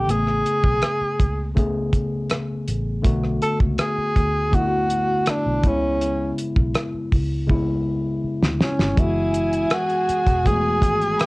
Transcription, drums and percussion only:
0.09 closed hi-hat medium
0.27 cross-stick soft
0.46 closed hi-hat medium
0.64 kick medium
0.82 cross-stick medium
0.82 closed hi-hat medium
1.20 kick medium
1.20 closed hi-hat medium
1.57 kick medium
1.57 closed hi-hat medium
1.93 kick medium
1.93 closed hi-hat medium
2.30 cross-stick medium
2.30 closed hi-hat medium
2.68 closed hi-hat medium
3.04 kick loud
3.04 closed hi-hat medium
3.24 cross-stick soft
3.42 closed hi-hat medium
3.60 kick medium
3.78 cross-stick loud
3.78 closed hi-hat medium
4.16 kick medium
4.16 closed hi-hat medium
4.53 kick medium
4.53 closed hi-hat medium
4.90 closed hi-hat medium
5.26 cross-stick medium
5.26 closed hi-hat medium
5.64 kick medium
5.64 closed hi-hat medium
6.01 closed hi-hat medium
6.38 closed hi-hat medium
6.56 kick medium
6.74 cross-stick loud
6.74 closed hi-hat medium
7.12 kick medium
7.12 open hi-hat soft
7.50 kick medium
8.42 snare medium
8.60 snare medium
8.79 snare medium
8.97 kick loud
8.97 closed hi-hat medium
9.34 closed hi-hat medium
9.53 closed hi-hat soft
9.70 cross-stick loud
9.70 closed hi-hat medium
9.90 closed hi-hat soft
10.09 closed hi-hat medium
10.27 kick medium
10.27 closed hi-hat soft
10.46 kick medium
10.46 closed hi-hat medium
10.82 kick medium
10.82 closed hi-hat medium
11.02 closed hi-hat soft
11.19 cross-stick loud
11.19 closed hi-hat medium

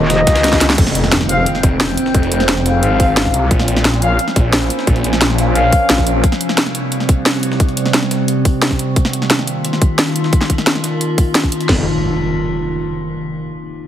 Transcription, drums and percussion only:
0.10 snare loud
0.10 closed hi-hat medium
0.27 kick loud
0.27 snare loud
0.27 closed hi-hat loud
0.27 closed hi-hat medium
0.36 snare loud
0.36 closed hi-hat medium
0.44 snare medium
0.44 closed hi-hat medium
0.48 snare medium
0.48 closed hi-hat medium
0.53 kick medium
0.53 snare medium
0.53 snare loud
0.53 closed hi-hat medium
0.61 snare medium
0.61 closed hi-hat loud
0.61 closed hi-hat medium
0.70 snare medium
0.70 closed hi-hat medium
0.78 kick loud
0.78 closed hi-hat medium
0.78 crash loud
0.87 snare medium
0.95 closed hi-hat medium
1.04 snare soft
1.12 snare loud
1.12 closed hi-hat medium
1.21 snare soft
1.21 closed hi-hat soft
1.29 closed hi-hat medium
1.29 closed hi-hat loud
1.46 closed hi-hat medium
1.55 snare soft
1.63 kick loud
1.63 closed hi-hat medium
1.80 snare loud
1.80 closed hi-hat medium
1.97 closed hi-hat medium
1.97 closed hi-hat loud
2.06 snare medium
2.15 kick loud
2.15 closed hi-hat medium
2.23 closed hi-hat soft
2.32 closed hi-hat medium
2.40 snare medium
2.40 closed hi-hat soft
2.49 snare loud
2.49 closed hi-hat medium
2.57 snare soft
2.66 snare soft
2.66 closed hi-hat medium
2.83 closed hi-hat medium
3.00 kick loud
3.00 closed hi-hat medium
3.00 open hi-hat medium
3.17 snare loud
3.17 closed hi-hat medium
3.25 kick medium
3.25 snare medium
3.34 closed hi-hat medium
3.51 kick loud
3.51 closed hi-hat medium
3.59 snare medium
3.68 closed hi-hat medium
3.77 snare soft
3.85 snare loud
3.85 closed hi-hat medium
3.94 snare soft
3.94 closed hi-hat soft
4.02 closed hi-hat medium
4.19 closed hi-hat medium
4.28 snare soft
4.36 kick loud
4.36 closed hi-hat medium
4.53 snare loud
4.53 closed hi-hat medium
4.70 closed hi-hat medium
4.79 snare medium
4.87 kick loud
4.87 closed hi-hat medium
4.96 closed hi-hat soft
5.04 closed hi-hat medium
5.13 snare soft
5.13 closed hi-hat soft
5.21 snare loud
5.21 closed hi-hat medium
5.30 snare soft
5.38 snare soft
5.38 closed hi-hat medium
5.55 closed hi-hat medium
5.72 kick loud
5.72 closed hi-hat medium
5.72 open hi-hat medium
5.90 snare loud
5.90 closed hi-hat medium
5.98 kick medium
5.98 snare medium
6.07 closed hi-hat medium
6.24 kick loud
6.24 closed hi-hat medium
6.32 snare medium
6.41 closed hi-hat medium
6.49 snare soft
6.58 snare loud
6.58 closed hi-hat medium
6.66 snare soft
6.66 closed hi-hat soft
6.75 closed hi-hat medium
6.92 closed hi-hat medium
7.00 snare soft
7.09 kick loud
7.09 closed hi-hat medium
7.26 snare loud
7.26 closed hi-hat medium
7.43 closed hi-hat medium
7.51 snare medium
7.60 kick loud
7.60 closed hi-hat medium
7.69 closed hi-hat soft
7.77 closed hi-hat medium
7.86 snare soft
7.86 closed hi-hat soft
7.94 snare loud
7.94 closed hi-hat medium
8.03 snare soft
8.11 snare soft
8.11 closed hi-hat medium
8.28 closed hi-hat medium
8.45 kick loud
8.45 closed hi-hat medium
8.45 open hi-hat medium
8.62 snare loud
8.62 closed hi-hat medium
8.71 kick medium
8.71 snare medium
8.79 closed hi-hat medium
8.96 kick loud
8.96 closed hi-hat medium
9.05 snare soft
9.13 closed hi-hat medium
9.22 snare soft
9.30 snare loud
9.30 closed hi-hat medium
9.39 snare soft
9.39 closed hi-hat soft
9.47 closed hi-hat loud
9.47 closed hi-hat medium
9.65 closed hi-hat medium
9.73 snare soft
9.82 kick loud
9.82 closed hi-hat medium
9.99 snare loud
9.99 closed hi-hat medium
10.16 closed hi-hat medium
10.16 closed hi-hat loud
10.24 snare soft
10.33 kick loud
10.33 closed hi-hat medium
10.41 snare soft
10.41 snare medium
10.41 closed hi-hat soft
10.50 kick medium
10.50 closed hi-hat medium
10.58 snare soft
10.58 closed hi-hat soft
10.67 snare loud
10.67 closed hi-hat medium
10.75 snare soft
10.84 snare soft
10.84 closed hi-hat loud
10.84 closed hi-hat medium
11.01 closed hi-hat medium
11.18 kick medium
11.18 closed hi-hat loud
11.18 open hi-hat medium
11.35 snare loud
11.35 closed hi-hat medium
11.44 kick medium
11.52 closed hi-hat medium
11.52 closed hi-hat loud
11.61 closed hi-hat medium
11.69 kick loud
11.69 snare loud
11.69 crash medium

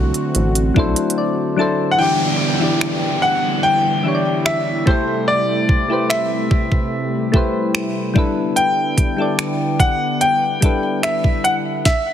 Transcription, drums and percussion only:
0.14 closed hi-hat soft
0.35 closed hi-hat medium
0.55 closed hi-hat medium
0.76 kick medium
0.96 closed hi-hat medium
1.10 closed hi-hat medium
2.81 finger snap loud
4.46 finger snap loud
4.87 kick loud
5.69 kick medium
6.10 finger snap loud
6.51 kick medium
6.72 kick medium
7.34 kick medium
7.75 finger snap loud
8.16 kick loud
8.57 closed hi-hat medium
8.98 kick medium
8.98 closed hi-hat medium
9.39 finger snap loud
9.39 closed hi-hat medium
9.80 kick medium
9.80 closed hi-hat medium
10.21 closed hi-hat medium
10.62 kick medium
10.62 closed hi-hat medium
11.03 finger snap loud
11.03 closed hi-hat medium
11.24 kick medium
11.45 closed hi-hat medium
11.85 kick loud
11.85 snare medium

